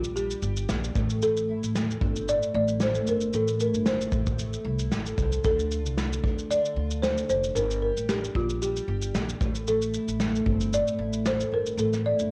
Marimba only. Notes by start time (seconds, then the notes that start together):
Already playing: F4
0.16 G4
1.23 A4
2.29 D5
2.55 D5
2.83 C5
3.09 A#4
3.35 A4
3.61 A#4
3.87 C5
5.45 A4
6.51 D5
7.02 C5
7.30 C5
7.55 A#4
7.82 A#4
8.09 G4
8.36 F4
8.62 G4
9.68 A4
10.74 D5
11.27 C5
11.54 A#4
11.79 A4
12.06 D5